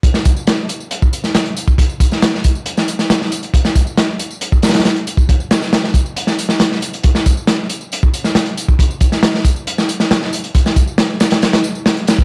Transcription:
\new DrumStaff \with { instrumentName = "Drums" } \drummode { \time 4/4 \tempo 4 = 137 <hh bd tamb>16 <sn tamb>16 <hh bd tamb>16 tamb16 <hh sn tamb>8 <hh tamb>16 tamb16 <hh tamb>16 <bd tamb>16 <hh tamb>16 <sn tamb>16 <hh sn tamb>16 hh16 <hh tamb>16 <bd tamb>16 | <hh bd tamb>16 tamb16 <hh bd tamb>16 <sn tamb>16 <hh sn tamb>16 sn16 <hh bd tamb>16 tamb16 <hh tamb>16 <sn tamb>16 <hh tamb>16 <sn tamb>16 <hh sn tamb>16 sn16 <hh tamb>16 <hh tamb>16 | <hh bd tamb>16 <sn tamb>16 <hh bd tamb>16 tamb16 <hh sn tamb>8 <hh tamb>16 tamb16 <hh tamb>16 <bd tamb>16 <hh sn tamb>32 <hh sn>32 <hh sn>32 <hh sn>32 <hh sn tamb>16 hh16 <hh tamb>16 <bd tamb>16 | <hh bd tamb>16 tamb16 <hh sn tamb>16 <sn tamb>16 <hh sn tamb>16 sn16 <hh bd tamb>16 tamb16 <hh tamb>16 <sn tamb>16 <hh tamb>16 <sn tamb>16 <hh sn tamb>16 sn16 <hh tamb>16 <hh tamb>16 |
<hh bd tamb>16 <sn tamb>16 <hh bd tamb>16 tamb16 <hh sn tamb>8 <hh tamb>16 tamb16 <hh tamb>16 <bd tamb>16 <hh tamb>16 <sn tamb>16 <hh sn tamb>16 hh16 <hh tamb>16 <bd tamb>16 | <hh bd tamb>16 tamb16 <hh bd tamb>16 <sn tamb>16 <hh sn tamb>16 sn16 <hh bd tamb>16 tamb16 <hh tamb>16 <sn tamb>16 <hh tamb>16 <sn tamb>16 <hh sn tamb>16 sn16 <hh tamb>16 <hh tamb>16 | <hh bd tamb>16 <sn tamb>16 <hh bd tamb>16 tamb16 <hh sn tamb>8 <hh sn tamb>16 <hh sn tamb>16 <hh sn tamb>16 <hh sn tamb>16 tamb16 tamb16 <hh sn tamb>16 hh16 <hh sn tamb>16 <bd tamb>16 | }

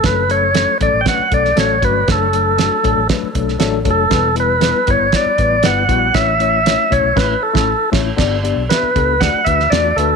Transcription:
<<
  \new Staff \with { instrumentName = "Tonewheel organ" } { \time 4/4 \key a \mixolydian \tempo 4 = 118 b'8 cis''4 d''16. g''32 fis''8 d''8 cis''8 b'8 | a'2 r4. a'8~ | a'8 b'4 cis''8 d''4 fis''4 | e''4. cis''8 b'8 a'4 r8 |
r4 b'4 fis''8 e''8 d''8 a'8 | }
  \new Staff \with { instrumentName = "Tine electric piano" } { \time 4/4 \key a \mixolydian <fis a cis' a'>16 r16 <fis a cis' a'>16 r16 <fis a cis' a'>16 r16 <fis a cis' a'>16 r16 <fis a cis' b'>16 r16 <fis a cis' a'>16 r16 <fis a cis' a'>16 r16 <fis a cis' fis'>16 r16 | <fis a d' a'>16 r16 <fis a d' a'>16 r16 <fis a d' fis'>16 r16 <fis a d' a'>16 r16 <fis a d' b'>16 r16 <fis a d' a'>16 r16 <fis a d' a'>16 r16 <fis a d' a'>16 r16 | <g b e' b'>16 r16 <g b e' b'>16 r16 <g b e' b'>16 r16 <g b e' b'>16 r16 <g b e' cis''>16 r16 <g b e' b'>16 r16 <g b e' b'>16 r16 <g b e' fis'>16 r16 | <a cis' e' cis''>16 r16 <a cis' e' cis''>16 r16 <a cis' e' cis''>16 r16 <a cis' e' cis''>16 r16 <a cis' e' cis''>8 r16 <a cis' e'>8 r16 <a cis' e' cis''>8 |
<b d' g' d''>16 r16 <b d' g' d''>16 r16 <b d' g' e''>16 r16 <b d' g' a'>16 r16 <a d' fis' d''>16 r16 <a d' fis' b'>16 r16 <a d' fis' d''>16 r16 <a d' fis' b'>16 r16 | }
  \new Staff \with { instrumentName = "Fingered electric bass" } { \clef bass \time 4/4 \key a \mixolydian fis,,4~ fis,,16 r16 a,,16 a,,16 r8 b,,8 a,,8 g,,8 | fis,,4~ fis,,16 r16 a,,16 a,,16 r8 b,,8 a,,8 f,,8 | e,,4~ e,,16 r16 g,,16 g,,16 r8 a,,8 g,,8 bes,,8 | a,,4~ a,,16 r16 b,,16 b,,16 a,,8 r16 a,,8 r16 a,,8 |
g,,8. b,,16 r8 cis,8 d,16 r16 d,8 e,8 d,8 | }
  \new DrumStaff \with { instrumentName = "Drums" } \drummode { \time 4/4 <hh bd sn>8 hh8 <hh sn>8 <hh bd>8 <hh bd sn>8 <hh bd>16 sn16 <hh sn>8 <hh bd>8 | <hh bd sn>8 hh8 <hh sn>8 <hh bd>8 <hh bd sn>8 <hh bd>16 sn16 <hh sn>8 <hh bd>8 | <hh bd sn>8 hh8 <hh sn>8 <hh bd>8 <hh bd sn>8 <hh bd>8 <hh sn>8 <hh bd>8 | <hh bd sn>8 hh8 <hh sn>8 <hh bd>8 <cymc bd sn>8. <bd sn>16 r8 <cymc bd sn>8 |
<cymc bd sn>8 hh8 <hh sn>8 <hh bd>8 <hh bd sn>8 <hh bd>16 sn16 <hh sn>8 hh8 | }
>>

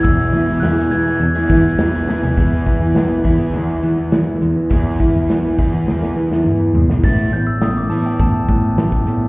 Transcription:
<<
  \new Staff \with { instrumentName = "Glockenspiel" } { \time 4/4 \key e \mixolydian \tempo 4 = 103 e'''4 fis'''8 gis'''2 r8 | r1 | r1 | a'''8 g'''16 e'''16 dis'''16 d'''16 a''16 g''16 a''2 | }
  \new Staff \with { instrumentName = "Overdriven electric guitar" } { \time 4/4 \key e \mixolydian <e b e' gis'>8. <b e' gis'>16 <e b e' gis'>16 <b e' gis'>8 <b e' gis'>8 <b e' gis'>16 <e b e' gis'>8 <e b e' gis'>16 <b e' gis'>16 <e b e' gis'>16 <b e' gis'>16 | <b e' gis'>4. <b e' gis'>2~ <b e' gis'>8 | <b e' gis'>4. <b e' gis'>2~ <b e' gis'>8 | <e b e'>8 <e b>8 <e b>8 <e b e'>8 <e b>8 <e b>8 <e b>8 <e b>8 | }
  \new Staff \with { instrumentName = "Clean electric guitar" } { \clef bass \time 4/4 \key e \mixolydian <e, b, e gis b e'>8 <e, b, e gis b e'>16 <e gis b e'>16 <e, b, e gis b e'>8 <e gis b e'>8. <e gis b e'>16 <e gis b e'>8. r16 <e gis b e'>16 <e gis b e'>16 | e,8 e'8 b8 e'8 gis8 b8 e8 gis8 | e,8 e'8 b8 e'8 gis8 b8 e8 gis8 | a,8 e8 a8 b8 e8 b8 e8 a8 | }
  \new Staff \with { instrumentName = "Fingered electric bass" } { \clef bass \time 4/4 \key e \mixolydian e,8 e16 r16 e,8 e8 e,8 e16 r16 e,8 e8 | e,8 e16 e,16 e8 e,16 e16 e,8 e16 e,16 e8 e,16 e16 | e,8 e16 e,16 e8 e,16 e16 e,8 e16 e,16 e8 e,16 b,,16 | a,,16 r16 a,8 a,,8 a,8 a,,16 r16 a,8 a,,8 a,8 | }
  \new DrumStaff \with { instrumentName = "Drums" } \drummode { \time 4/4 <hh bd>16 hh16 hh16 hh16 <hh sn>16 hh16 hh8 hh16 hh16 <hh bd>16 hh16 <hh sn>16 hh16 sn16 tomfh16 | <hh bd>8 <hh bd>8 <hh sn>8 <hh bd>8 hh8 hh8 <hh sn>8 hh8 | <hh bd>8 <hh bd>8 <hh sn>8 <hh bd>8 sn16 sn8 sn16 toml8 tomfh16 sn16 | <hh bd>8 hh8 <hh sn>8 hh8 <hh bd>8 <hh bd>8 <hh sn>16 bd16 hh8 | }
>>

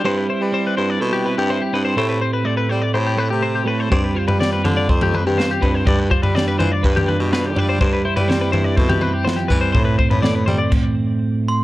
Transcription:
<<
  \new Staff \with { instrumentName = "Glockenspiel" } { \time 4/4 \key a \minor \tempo 4 = 124 r1 | r1 | r1 | r1 |
r1 | r2. r8 c'''8 | }
  \new Staff \with { instrumentName = "Clean electric guitar" } { \time 4/4 \key a \minor c''16 b'16 c''16 b'16 c''16 b'16 c''16 d''16 c''16 g'16 b'16 g'16 c''16 g'16 b'16 c''16 | c''16 b'16 c''16 b'16 d''16 b'16 c''16 d''16 c''16 g'16 b'16 g'16 c''16 g'16 b'16 c''16 | c''16 b'16 c''16 b'16 d''16 b'16 c''16 d''16 c''16 g'16 b'16 g'16 c''16 g'16 b'16 c''16 | d''16 b'16 c''16 b'16 d''16 b'16 c''16 d''16 b'16 g'16 b'16 g'16 b'16 g'16 b'16 c''16 |
c''16 b'16 c''16 b'16 c''16 b'16 c''16 d''16 c''16 g'16 b'16 g'16 c''16 g'16 b'16 c''16 | c''16 b'16 c''16 b'16 d''16 b'16 c''16 d''16 r2 | }
  \new Staff \with { instrumentName = "Clean electric guitar" } { \time 4/4 \key a \minor << { <c' e' b'>8 e'4 e'8 a'16 b'8. e'4 | <a c' g' c''>8 c'4 c'8 g'4 c'4~ | c'8 f'4 f'8 c''4 f'4 | r8 f'4 f'8 b'4 f'4 |
r8 e'4 e'8 a'16 b'4.~ b'16 | r8 c'4 c'2~ c'8 | } \\ { g4 c'4. c'4 c'8 | a,4 a4. a4 a8 | g4 c'4. c'4 c'8 | g4 d'4. d'4 d'8 |
g4 c'4. c'8 f8 g8 | a,4 a4 r2 | } >> }
  \new Staff \with { instrumentName = "Baritone saxophone" } { \clef bass \time 4/4 \key a \minor g,8 r16 g8. g,8 b,8. g,8 r16 g,8 | a,8 r4 g16 r16 a,8. c8. a,8 | g,8 r16 g8. d8 f,8. g,8 r16 g,8 | g,8 r16 g8. e16 r16 g,8. b,8. g8 |
g,8 r16 g8. g,8 b,8. r8. e8 | a,8 r16 a,8. g16 r2 r16 | }
  \new DrumStaff \with { instrumentName = "Drums" } \drummode { \time 4/4 r4 r4 r4 r4 | r4 r4 r4 r4 | <bd tomfh>8. tomfh16 <sn toml>8 <tomfh toml>8 bd16 <tomfh toml>16 toml8 sn8 <bd tomfh>8 | <bd tomfh>8 bd16 tomfh16 <sn toml>8 <tomfh toml>8 bd16 <tomfh toml>16 toml8 sn8 tomfh8 |
<bd tomfh>8. tomfh16 <sn toml>8 <tomfh toml>8 bd16 <tomfh toml>16 toml8 sn8 <bd tomfh>8 | <bd tomfh>8 bd16 tomfh16 <sn toml>8 <tomfh toml>8 <cymc bd>4 r4 | }
>>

